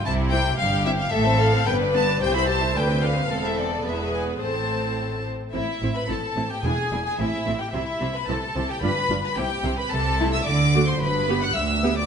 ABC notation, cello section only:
X:1
M:2/4
L:1/8
Q:1/4=110
K:C
V:1 name="Cello section" clef=bass
C,2 G,,2 | [K:Am] A,,2 G,,2 | C,,2 D,,2 | E,,2 E,,2 |
A,,3 z | A,, A,, A,, A,, | E,, E,, A,, A,, | C, C, C, C, |
G,, G,, C, C, | [K:G] C,2 D,2 | G,,2 D,,2 |]